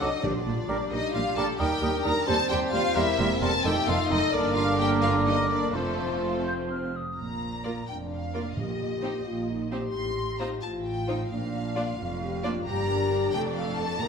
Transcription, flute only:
0.01 0.12 D6 medium
0.68 0.79 D6 medium
1.37 1.47 D6 medium
1.60 1.66 D#6 medium
1.83 1.89 D#6 medium
2.05 2.11 D#6 medium
2.28 2.34 C6 medium
2.51 2.57 C6 medium
2.73 2.79 C6 medium
2.96 3.02 C6 medium
3.19 3.25 C6 medium
3.42 3.48 C6 medium
3.64 3.70 C6 medium
3.88 3.94 C6 medium
4.11 4.17 C6 medium
4.34 5.77 D6 medium
5.76 6.43 C6 medium
6.47 6.53 G6 medium
6.71 6.98 F6 medium
6.96 7.19 D#6 medium

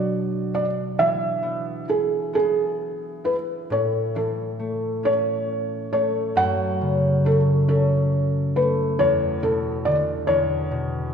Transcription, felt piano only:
0.00 0.53 D5 medium
0.55 0.65 D5 medium
0.99 1.84 E5 medium
1.89 2.34 G#4 medium
2.35 3.27 G#4 medium
3.25 3.35 B4 medium
3.72 4.17 C#5 medium
4.16 5.07 A4 medium
5.05 5.89 C#5 medium
5.93 6.38 C#5 medium
6.37 7.28 F#5 loud
7.26 7.36 A4 medium
7.69 8.59 A4 medium
8.56 9.01 B4 medium
8.99 9.40 C#5 medium
9.43 9.87 A4 medium
9.85 9.95 D5 medium
10.27 11.10 C#5 medium

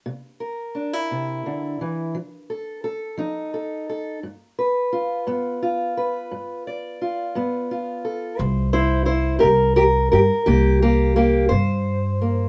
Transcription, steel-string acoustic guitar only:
0.06 0.68 C3 medium
0.40 2.10 A#4 soft
0.75 0.93 D4 soft
0.93 2.14 E4 soft
1.11 1.45 C3 medium
1.46 1.80 D3 medium
1.81 2.15 E3 medium
2.15 2.77 F3 medium
2.50 2.83 A4 medium
2.84 3.53 A4 medium
3.18 3.80 F3 medium
3.18 4.18 D#4 medium
3.54 3.88 A4 medium
3.90 4.19 A4 medium
4.23 4.85 G2 medium
4.59 5.96 B4 medium
4.93 5.61 F4 medium
5.27 5.89 G2 medium
5.27 7.35 B3 medium
5.63 7.00 F4 medium
5.97 6.66 B4 medium
6.31 6.94 G2 medium
6.67 8.04 D5 soft
7.02 7.70 F4 medium
7.35 7.98 G2 medium
7.35 8.35 B3 medium
7.71 8.38 F4 medium
8.05 8.38 A4 medium
8.38 9.01 C3 medium
8.38 8.72 E4 medium
8.38 8.72 C5 medium
8.73 9.04 E4 medium
8.73 9.05 C5 medium
9.06 9.42 E4 medium
9.06 9.38 C5 medium
9.39 9.47 G4 medium
9.39 9.75 A#4 medium
9.43 10.06 C3 medium
9.76 9.83 G4 medium
9.76 10.10 A#4 medium
10.12 10.18 G4 medium
10.12 10.47 A#4 medium
10.46 11.10 C3 medium
10.46 10.81 A#3 medium
10.46 10.81 G4 medium
10.82 11.15 A#3 medium
10.82 11.16 G4 medium
11.16 11.51 A#3 medium
11.16 11.48 G4 medium
11.49 12.14 C3 medium
11.49 12.49 C5 medium
12.22 12.49 A#3 soft

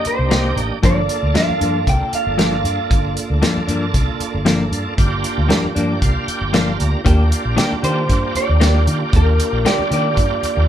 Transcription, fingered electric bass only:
0.06 muted fingered electric bass stroke soft
0.19 0.55 C2 medium
0.56 0.70 A1 medium
0.84 1.08 G1 medium
1.23 1.34 D2 medium
1.49 muted fingered electric bass stroke soft
1.61 1.85 G2 medium
1.87 2.00 C2 medium
2.13 muted fingered electric bass stroke soft
2.27 2.62 G1 medium
2.64 2.77 G2 medium
2.90 3.15 G1 medium
3.30 3.42 D2 medium
3.57 muted fingered electric bass stroke soft
3.68 3.93 G2 medium
3.94 4.08 C2 medium
4.20 muted fingered electric bass stroke soft
4.34 4.70 G1 medium
4.71 4.85 G2 medium
4.98 5.22 G1 medium
5.38 5.49 D2 medium
5.64 muted fingered electric bass stroke soft
5.76 6.00 G2 medium
6.02 6.15 C2 medium
6.28 muted fingered electric bass stroke soft
6.41 6.77 G1 medium
6.80 6.93 D2 medium
7.06 7.30 D#2 medium
7.45 7.57 A#1 medium
7.72 muted fingered electric bass stroke soft
7.83 8.08 D#3 medium
8.10 8.23 G2 medium
8.35 muted fingered electric bass stroke soft
8.49 8.85 D#2 medium
8.87 9.00 D#3 medium
9.13 9.38 D#2 medium
9.53 9.64 A#1 medium
9.79 muted fingered electric bass stroke soft
9.91 10.15 D#3 medium
10.17 10.30 G2 medium
10.43 muted fingered electric bass stroke soft
10.57 10.68 D#2 medium

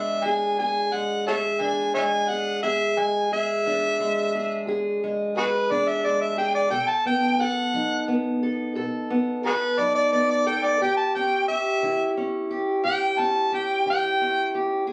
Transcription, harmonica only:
0.00 0.25 E5 medium
0.24 0.57 G#5 loud
0.59 0.95 G#5 loud
0.93 1.26 F#5 medium
1.28 1.36 A4 medium
1.28 1.34 C#5 medium
1.28 1.63 E5 medium
1.62 1.95 G#5 medium
1.95 2.01 C#5 medium
1.95 2.02 E5 medium
1.95 2.30 G#5 loud
2.29 2.62 F#5 medium
2.63 3.00 E5 medium
2.98 3.31 G#5 medium
3.33 4.65 E5 loud
5.38 5.45 F#4 medium
5.38 5.45 G#4 medium
5.38 5.73 B4 medium
5.71 5.90 D5 medium
5.88 6.07 E5 medium
6.06 6.21 D5 medium
6.21 6.37 E5 medium
6.38 6.54 G5 medium
6.55 6.70 D5 medium
6.71 6.91 G5 loud
6.89 7.05 A5 medium
7.07 7.42 G5 medium
7.41 8.07 F#5 loud
9.46 9.53 F#4 medium
9.46 9.53 G#4 medium
9.46 9.81 B4 medium
9.79 9.94 D5 medium
9.95 10.11 D5 medium
10.13 10.28 D5 medium
10.31 10.46 D5 medium
10.47 10.66 G5 medium
10.65 10.80 D5 medium
10.82 10.96 G5 medium
10.97 11.13 A5 medium
11.15 11.47 G5 medium
11.48 12.14 E5 loud
12.86 13.21 G5 loud
13.19 13.51 A5 loud
13.54 13.86 G5 medium
13.90 14.53 G5 loud

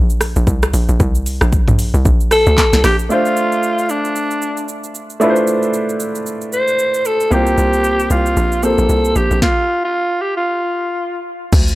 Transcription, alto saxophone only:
2.32 2.81 A4 loud
2.85 2.97 G4 loud
3.11 3.92 F4 loud
3.90 4.69 D4 medium
6.53 7.07 C5 loud
7.06 7.34 A4 loud
7.32 8.10 G4 loud
8.11 8.65 F4 medium
8.64 9.18 A4 loud
9.16 9.42 G4 medium
9.43 9.81 F4 medium
9.84 10.23 F4 medium
10.21 10.36 G4 medium
10.37 11.22 F4 medium

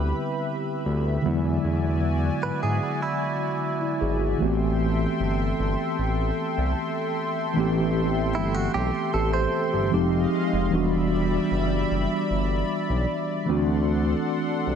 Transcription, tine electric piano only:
0.00 1.19 D3 medium
0.00 1.20 G3 medium
0.00 1.21 B3 medium
0.00 1.21 C4 medium
0.00 1.22 E4 medium
1.22 4.35 D3 medium
1.22 4.36 F#3 medium
1.22 4.36 G#3 medium
1.26 4.37 B3 medium
1.26 3.20 E4 medium
3.82 4.00 E4 medium
4.01 4.20 G#4 medium
4.21 4.58 F#4 medium
4.38 7.51 E3 medium
4.38 7.52 A3 medium
4.38 7.52 B3 medium
4.42 7.53 C4 medium
4.42 7.54 G4 medium
7.53 9.09 E3 medium
7.53 9.10 A3 medium
7.53 9.11 B3 medium
7.58 9.12 C4 medium
7.58 9.13 G4 medium
9.14 9.33 G4 medium
9.34 9.71 A4 medium
9.73 9.93 G4 medium
9.91 10.71 F3 medium
9.91 10.71 G#3 medium
9.91 10.72 C4 medium
9.91 10.72 D#4 medium
9.91 10.72 G4 medium
10.69 13.43 E3 medium
10.69 13.43 G3 medium
10.69 13.44 B3 medium
10.73 13.45 D4 medium
10.73 13.46 F#4 medium
13.45 14.75 E3 medium
13.45 14.75 A3 medium
13.45 14.75 C4 medium
13.50 14.75 D4 medium
13.50 14.75 F#4 medium

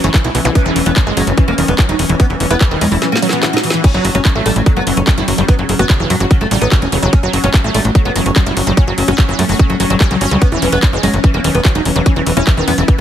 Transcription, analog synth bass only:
0.04 0.10 F#1 medium
0.24 0.30 B1 medium
0.35 0.41 B1 loud
0.45 0.51 B1 medium
0.66 0.71 E1 medium
0.76 0.82 E1 loud
0.86 0.92 E1 medium
1.07 1.13 F#1 medium
1.17 1.23 F#1 loud
1.27 1.33 F#1 medium
1.48 1.54 E1 medium
1.58 1.64 E1 loud
1.68 1.74 E1 medium
1.89 1.95 E1 medium
1.99 2.05 E1 loud
2.09 2.15 E1 medium
2.30 2.36 E1 medium
2.40 2.46 E1 loud
2.50 2.56 E1 medium
2.71 2.77 E1 medium
2.81 2.87 E2 loud
2.92 2.97 E1 medium
3.94 4.00 F#1 medium
4.05 4.11 F#1 loud
4.15 4.21 F#1 medium
4.35 4.41 A1 medium
4.46 4.52 A1 loud
4.56 4.62 A1 medium
4.77 4.82 F#1 medium
4.87 4.93 F#1 loud
4.97 5.03 F#1 medium
5.18 5.24 F#1 medium
5.28 5.34 F#1 loud
5.38 5.44 F#1 loud
5.59 5.65 F#1 medium
5.69 5.75 F#1 loud
5.79 5.85 F#1 medium
6.00 6.06 F#1 medium
6.10 6.16 F#2 loud
6.20 6.26 F#1 medium
6.41 6.47 F#1 medium
6.51 6.57 A1 loud
6.61 6.67 A1 medium
6.82 6.88 E1 medium
6.92 6.98 E1 loud
7.03 7.08 E1 loud
7.23 7.29 F#1 medium
7.33 7.39 F#1 loud
7.44 7.50 F#1 medium
7.64 7.70 A1 medium
7.75 7.80 A1 loud
7.85 7.91 A1 medium
8.05 8.11 F#1 medium
8.16 8.21 F#1 loud
8.26 8.32 F#1 medium
8.46 8.52 F#1 medium
8.57 8.63 F#1 loud
8.67 8.73 F#1 medium
8.87 8.93 F#1 medium
8.98 9.04 F#1 loud
9.08 9.14 F#1 medium
9.29 9.34 F#1 medium
9.39 9.45 F#2 loud
9.49 9.55 F#1 medium
9.70 9.76 F#1 medium
9.80 9.86 F#1 loud
9.90 9.96 F#1 medium
10.11 10.17 C#2 medium
10.21 10.27 G1 loud
10.31 10.37 C#2 loud
10.52 10.58 E1 medium
10.62 10.68 E1 loud
10.72 10.78 E1 medium
10.93 10.99 F#1 medium
11.03 11.09 F#1 loud
11.14 11.19 F#1 medium
11.34 11.40 E1 medium
11.44 11.50 E1 loud
11.55 11.61 E1 medium
11.75 11.81 E1 medium
11.85 11.91 E1 loud
11.96 12.02 E1 loud
12.16 12.22 E1 medium
12.27 12.32 E1 loud
12.37 12.43 E1 medium
12.57 12.63 E1 medium
12.68 12.73 E2 loud
12.78 12.84 E1 medium

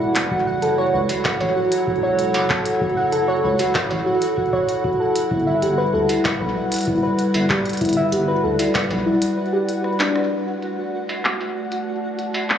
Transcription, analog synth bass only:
0.16 0.27 E1 loud
0.31 0.54 F#1 loud
0.62 0.86 F#1 medium
0.94 1.05 C#2 medium
1.41 1.52 A1 medium
1.87 2.36 E1 loud
2.34 2.46 F#1 medium
2.81 3.04 F#1 loud
3.13 3.36 F#1 loud
3.44 3.55 C#2 medium
3.91 4.02 A1 medium
5.31 5.54 G1 loud
5.63 5.86 G1 medium
5.94 6.05 D2 medium
6.41 6.52 B1 medium
6.87 6.99 G1 loud
7.34 7.46 G1 medium
7.81 8.04 G1 loud
8.12 8.36 G1 medium
8.44 8.55 D2 medium
8.91 9.02 B1 medium

